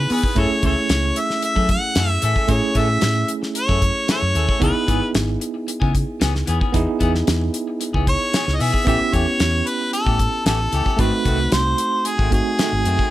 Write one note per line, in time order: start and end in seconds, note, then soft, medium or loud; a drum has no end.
0.00 0.32 B3 medium
0.00 0.32 D#4 medium
0.00 0.33 E4 medium
0.00 0.33 G#4 medium
0.09 0.23 E3 medium
0.09 0.24 B3 medium
0.09 0.21 B3 medium
0.09 0.23 C#4 medium
0.09 0.21 G#4 medium
0.09 0.40 B4 medium
0.09 open hi-hat medium
0.23 0.36 B3 soft
0.23 0.36 C#4 soft
0.23 kick medium
0.35 0.47 F#2 medium
0.35 0.50 E3 medium
0.35 2.44 A3 medium
0.35 0.50 A3 medium
0.35 2.45 C#4 medium
0.35 0.49 C#4 medium
0.35 2.46 E4 medium
0.35 2.46 G#4 medium
0.35 0.49 A4 medium
0.35 0.64 C#5 medium
0.35 kick loud
0.35 closed hi-hat medium
0.50 muted clean electric guitar stroke soft
0.50 muted fingered electric bass stroke soft
0.62 0.74 C#2 medium
0.62 0.77 E3 medium
0.62 0.76 A3 medium
0.62 0.76 C#4 medium
0.62 0.75 A4 medium
0.62 1.20 C#5 medium
0.62 kick medium
0.62 closed hi-hat medium
0.76 muted clean electric guitar stroke soft
0.89 1.10 C#2 medium
0.89 snare loud
0.89 closed hi-hat medium
1.03 muted clean electric guitar stroke soft
1.16 1.44 E5 medium
1.16 muted clean electric guitar stroke soft
1.16 closed hi-hat medium
1.29 muted clean electric guitar stroke soft
1.29 snare soft
1.42 1.69 E5 medium
1.42 muted clean electric guitar stroke soft
1.42 closed hi-hat medium
1.55 1.68 E3 medium
1.55 1.77 F#3 medium
1.55 1.68 A3 medium
1.55 1.69 C#4 medium
1.55 1.69 A4 medium
1.55 kick medium
1.69 2.10 F#5 loud
1.69 muted clean electric guitar stroke soft
1.69 kick medium
1.69 closed hi-hat medium
1.95 2.17 F#2 medium
1.95 2.09 E3 soft
1.95 2.09 A3 medium
1.95 2.08 C#4 medium
1.95 2.07 A4 medium
1.95 snare loud
1.95 closed hi-hat medium
2.08 2.24 E5 loud
2.08 muted clean electric guitar stroke soft
2.21 2.33 A2 medium
2.21 2.35 E3 medium
2.21 2.36 A3 medium
2.21 2.35 C#4 medium
2.21 2.34 A4 medium
2.21 2.52 E5 medium
2.21 closed hi-hat medium
2.35 2.53 A3 soft
2.35 2.52 C#4 soft
2.35 2.51 A4 medium
2.35 kick medium
2.48 2.60 A2 medium
2.48 4.57 A3 medium
2.48 4.57 C#4 medium
2.48 4.58 E4 medium
2.48 4.59 G#4 medium
2.48 2.79 C#5 medium
2.48 kick loud
2.48 closed hi-hat medium
2.62 muted clean electric guitar stroke soft
2.74 2.96 A2 medium
2.74 2.89 E3 medium
2.74 2.88 A3 medium
2.74 2.88 C#4 medium
2.74 2.87 A4 medium
2.74 3.30 E5 medium
2.74 kick medium
2.74 closed hi-hat medium
2.88 muted clean electric guitar stroke soft
3.01 3.23 A2 medium
3.01 snare loud
3.01 closed hi-hat medium
3.15 muted clean electric guitar stroke soft
3.28 muted clean electric guitar stroke soft
3.28 closed hi-hat medium
3.42 muted clean electric guitar stroke soft
3.42 snare soft
3.55 4.06 C#5 loud
3.55 muted clean electric guitar stroke soft
3.55 closed hi-hat medium
3.68 3.90 F#2 medium
3.68 3.80 E3 soft
3.68 3.81 A3 medium
3.68 3.81 C#4 medium
3.68 3.82 A4 medium
3.68 kick medium
3.81 muted clean electric guitar stroke soft
3.81 kick medium
3.81 closed hi-hat medium
4.07 4.22 E3 medium
4.07 4.21 A3 soft
4.07 4.21 C#4 medium
4.07 4.20 A4 medium
4.07 4.59 C#5 loud
4.07 snare loud
4.07 closed hi-hat medium
4.21 4.32 F#2 medium
4.21 muted clean electric guitar stroke soft
4.33 4.46 D#2 medium
4.33 4.48 E3 soft
4.33 4.49 A3 medium
4.33 4.48 C#4 medium
4.33 4.47 A4 medium
4.33 closed hi-hat medium
4.48 4.60 A3 soft
4.48 4.60 C#4 soft
4.48 4.61 A4 soft
4.48 kick medium
4.59 4.72 C#2 loud
4.59 4.75 E3 medium
4.59 6.69 B3 medium
4.59 4.74 B3 medium
4.59 4.74 C#4 medium
4.59 6.70 D#4 medium
4.59 6.70 E4 medium
4.59 4.73 G#4 medium
4.59 6.71 G#4 medium
4.59 5.12 B4 medium
4.59 kick loud
4.59 closed hi-hat medium
4.74 muted clean electric guitar stroke soft
4.87 4.99 G#1 medium
4.87 5.01 E3 medium
4.87 5.01 B3 medium
4.87 5.01 C#4 medium
4.87 5.00 G#4 medium
4.87 kick medium
4.87 closed hi-hat medium
5.01 muted clean electric guitar stroke soft
5.15 5.35 G#1 medium
5.15 snare loud
5.15 closed hi-hat medium
5.28 muted clean electric guitar stroke soft
5.40 muted clean electric guitar stroke soft
5.40 closed hi-hat medium
5.54 muted clean electric guitar stroke soft
5.67 muted clean electric guitar stroke soft
5.67 closed hi-hat medium
5.80 6.02 C#3 medium
5.80 5.92 E3 medium
5.80 5.93 B3 medium
5.80 5.93 C#4 medium
5.80 5.94 G#4 medium
5.80 kick medium
5.94 muted clean electric guitar stroke soft
5.94 kick medium
5.94 closed hi-hat medium
6.20 6.42 C#2 medium
6.20 6.34 E3 medium
6.20 6.34 B3 medium
6.20 6.34 C#4 medium
6.20 6.33 G#4 medium
6.20 snare loud
6.20 closed hi-hat medium
6.34 muted clean electric guitar stroke soft
6.34 snare soft
6.46 6.58 E2 medium
6.46 6.60 E3 medium
6.46 6.61 B3 medium
6.46 6.60 C#4 medium
6.46 6.59 G#4 medium
6.46 closed hi-hat medium
6.60 6.78 B3 soft
6.60 6.77 C#4 medium
6.60 6.76 G#4 medium
6.60 kick medium
6.72 6.85 E2 medium
6.72 8.82 B3 medium
6.72 8.83 D#4 medium
6.72 8.83 E4 medium
6.72 8.84 G#4 medium
6.72 kick loud
6.72 closed hi-hat medium
6.87 muted clean electric guitar stroke soft
6.99 7.21 E2 loud
6.99 7.14 E3 medium
6.99 7.14 B3 medium
6.99 7.13 C#4 medium
6.99 7.12 G#4 medium
6.99 kick medium
6.99 closed hi-hat medium
7.14 muted clean electric guitar stroke soft
7.14 snare soft
7.27 7.48 E2 medium
7.27 snare loud
7.27 closed hi-hat medium
7.41 muted clean electric guitar stroke soft
7.53 muted clean electric guitar stroke soft
7.53 closed hi-hat medium
7.68 muted clean electric guitar stroke soft
7.80 muted clean electric guitar stroke soft
7.80 closed hi-hat medium
7.93 8.15 C#2 medium
7.93 8.05 E3 medium
7.93 8.06 B3 medium
7.93 8.06 C#4 medium
7.93 8.07 G#4 medium
7.93 kick medium
8.07 8.57 C#5 loud
8.07 kick medium
8.07 closed hi-hat medium
8.32 8.47 E3 soft
8.32 8.46 B3 soft
8.32 8.46 C#4 soft
8.32 8.44 G#4 medium
8.32 snare loud
8.32 closed hi-hat medium
8.46 8.58 C#2 medium
8.46 muted clean electric guitar stroke soft
8.46 snare soft
8.55 8.73 E3 medium
8.55 8.63 D#5 medium
8.59 8.71 B2 medium
8.59 8.73 B3 medium
8.59 8.73 C#4 medium
8.59 8.71 G#4 medium
8.59 8.87 E5 medium
8.59 open hi-hat medium
8.72 8.86 B3 soft
8.72 8.86 C#4 soft
8.72 8.86 G#4 medium
8.72 kick medium
8.85 8.97 A1 loud
8.85 9.00 E3 medium
8.85 8.99 A3 medium
8.85 10.94 B3 medium
8.85 10.95 C#4 medium
8.85 8.99 C#4 medium
8.85 10.96 E4 medium
8.85 8.98 G4 medium
8.85 10.96 G4 medium
8.85 9.16 E5 loud
8.85 kick loud
8.85 closed hi-hat medium
8.99 muted clean electric guitar stroke soft
9.12 9.24 E2 medium
9.12 9.26 E3 medium
9.12 9.27 A3 medium
9.12 9.26 C#4 medium
9.12 9.25 G4 medium
9.12 9.68 C#5 medium
9.12 kick medium
9.12 closed hi-hat medium
9.26 muted clean electric guitar stroke soft
9.40 9.61 E2 medium
9.40 snare loud
9.40 closed hi-hat medium
9.53 muted clean electric guitar stroke soft
9.66 9.93 B4 medium
9.66 muted clean electric guitar stroke soft
9.66 closed hi-hat medium
9.79 muted clean electric guitar stroke soft
9.92 10.43 A4 medium
9.92 muted clean electric guitar stroke soft
9.92 closed hi-hat medium
10.05 10.27 A2 medium
10.05 10.17 E3 medium
10.05 10.18 A3 medium
10.05 10.18 C#4 medium
10.05 10.19 G4 medium
10.05 kick medium
10.18 muted clean electric guitar stroke soft
10.18 kick medium
10.18 closed hi-hat medium
10.45 10.67 A1 medium
10.45 10.59 E3 medium
10.45 10.59 A3 soft
10.45 10.59 C#4 soft
10.45 10.58 G4 medium
10.45 11.02 A4 medium
10.45 snare loud
10.45 closed hi-hat medium
10.59 muted clean electric guitar stroke soft
10.71 10.83 C#2 medium
10.71 10.86 E3 medium
10.71 10.86 A3 medium
10.71 10.85 C#4 medium
10.71 10.83 G4 medium
10.71 closed hi-hat medium
10.84 10.98 A3 soft
10.84 10.99 C#4 medium
10.84 10.98 G4 medium
10.84 kick medium
10.97 11.10 G#1 medium
10.97 11.12 D#3 medium
10.97 12.28 A3 medium
10.97 11.12 A3 medium
10.97 12.29 C4 medium
10.97 11.11 C4 medium
10.97 12.30 D#4 medium
10.97 12.30 F#4 medium
10.97 11.10 F#4 medium
10.97 11.52 B4 medium
10.97 kick loud
10.97 closed hi-hat medium
11.12 muted clean electric guitar stroke soft
11.25 11.46 C2 medium
11.25 11.39 D#3 medium
11.25 11.39 A3 medium
11.25 11.38 C4 medium
11.25 11.38 F#4 medium
11.25 kick medium
11.25 closed hi-hat medium
11.39 muted clean electric guitar stroke soft
11.52 11.73 C2 loud
11.52 12.08 C5 medium
11.52 snare loud
11.52 closed hi-hat medium
11.65 muted clean electric guitar stroke soft
11.78 muted clean electric guitar stroke soft
11.78 closed hi-hat medium
11.92 muted clean electric guitar stroke soft
12.05 12.33 G#4 medium
12.05 muted clean electric guitar stroke soft
12.05 closed hi-hat medium
12.18 12.40 G#1 medium
12.18 12.30 D#3 soft
12.18 12.31 A3 medium
12.18 12.31 C4 medium
12.18 12.32 F#4 medium
12.18 kick medium
12.31 13.11 A3 soft
12.31 13.11 C4 soft
12.31 13.11 D#4 soft
12.31 13.11 F#4 medium
12.31 13.11 G#4 medium
12.31 muted clean electric guitar stroke soft
12.31 kick medium
12.31 closed hi-hat medium
12.58 12.72 D#3 soft
12.58 12.72 A3 medium
12.58 12.71 C4 medium
12.58 12.70 F#4 medium
12.58 snare loud
12.58 closed hi-hat medium
12.71 12.83 G#1 medium
12.71 muted clean electric guitar stroke soft
12.84 12.96 F#2 medium
12.84 12.98 D#3 medium
12.84 12.99 A3 medium
12.84 12.98 C4 medium
12.84 12.97 F#4 medium
12.84 closed hi-hat medium
12.98 13.11 A3 soft
12.98 13.11 C4 medium
12.98 13.11 F#4 medium
12.98 kick medium